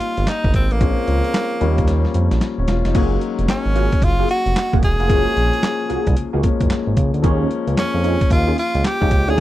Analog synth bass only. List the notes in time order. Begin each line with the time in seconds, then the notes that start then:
0.18 G1
0.44 G1
0.54 G#1
0.72 A1
0.81 A#1
1.08 C#2
1.61 D#2
2.15 F2
2.32 A#1
2.58 D#1
2.68 E1
2.85 F1
2.95 F#1
3.39 F1
3.49 G#1
3.66 G#1
4.02 F#1
4.46 F1
4.74 F1
4.83 E1
5.00 F1
5.10 F#1
5.37 A#1
5.90 C2
6.07 C2
6.17 C#2
6.34 C#2
6.61 F#1
6.87 G#1
6.97 C#2
7.14 D2
7.24 D#2
7.67 C#2
7.77 F2
7.94 F2
8.31 D#2
8.75 C#2
9.02 C#2
9.11 C#2
9.28 D2